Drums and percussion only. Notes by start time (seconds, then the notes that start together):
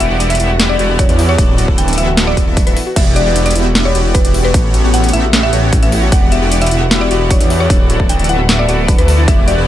0.00 closed hi-hat
0.20 closed hi-hat
0.30 closed hi-hat
0.35 closed hi-hat
0.40 closed hi-hat
0.60 snare, closed hi-hat
0.79 closed hi-hat
0.99 kick, closed hi-hat
1.09 closed hi-hat
1.19 open hi-hat
1.38 kick, closed hi-hat
1.58 closed hi-hat
1.68 kick
1.78 closed hi-hat
1.88 closed hi-hat
1.93 closed hi-hat
1.98 closed hi-hat
2.17 snare, closed hi-hat
2.37 kick, closed hi-hat
2.57 kick, closed hi-hat
2.67 closed hi-hat
2.77 open hi-hat
2.96 kick, closed hi-hat, crash
3.16 closed hi-hat
3.36 closed hi-hat
3.46 closed hi-hat
3.51 closed hi-hat
3.56 closed hi-hat
3.75 snare, closed hi-hat
3.95 closed hi-hat
4.15 kick, closed hi-hat
4.25 closed hi-hat
4.34 open hi-hat
4.54 kick, closed hi-hat
4.74 closed hi-hat
4.94 closed hi-hat
5.04 closed hi-hat
5.09 closed hi-hat
5.13 closed hi-hat
5.33 snare, closed hi-hat
5.53 closed hi-hat
5.73 kick, closed hi-hat
5.83 closed hi-hat
5.92 open hi-hat
6.12 kick, closed hi-hat
6.32 closed hi-hat
6.52 closed hi-hat
6.62 closed hi-hat
6.67 closed hi-hat
6.71 closed hi-hat
6.91 snare, closed hi-hat
7.11 closed hi-hat
7.31 kick, closed hi-hat
7.41 closed hi-hat
7.50 open hi-hat
7.70 kick, closed hi-hat
7.90 closed hi-hat
8.00 kick
8.09 closed hi-hat
8.19 closed hi-hat
8.24 closed hi-hat
8.29 closed hi-hat
8.49 snare, closed hi-hat
8.69 closed hi-hat
8.88 kick, closed hi-hat
8.98 closed hi-hat
9.08 open hi-hat
9.28 kick, closed hi-hat
9.48 closed hi-hat